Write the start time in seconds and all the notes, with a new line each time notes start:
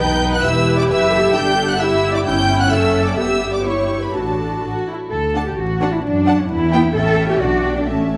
Already playing: B4
0.00 B1 D#4 G5 G6
0.33 F#5 F#6
0.43 E1 E4 G4 E5 E6
0.77 D5 D6
0.89 F#1 B4 E5 E6
1.12 A4
1.34 G1 D4 G5 G6
1.68 F#5 F#6
1.79 E4 G4 E5 E6
2.14 D5 D6
2.25 G1 C#4 E4 G5 G6
2.60 F#5 F#6
2.71 F#1 A4 E5 E6
3.06 D5 D6
3.17 G1 B3 G4 E5 E6
3.52 D5 D6
3.63 E4 C#5 C#6
4.00 B4 B5
4.13 A1 D4 F#4 A4 A5
4.62 A1 F#4
4.88 E4
5.10 D2 A4
5.34 D4 F#5 A5
5.46 G4
5.57 A1 F#4
5.80 D4 F#5 A5
5.92 E4
6.04 F#2 D4
6.26 D4 F#5 A5
6.38 C#4
6.49 E2 E4
6.72 B3 G5
6.94 A1 C#4 A4 E5 G5
7.29 G4
7.40 B1 D4 F#4 D5 F#5
7.64 G5
7.76 D4
7.87 A1 A3 C#4 E5 A5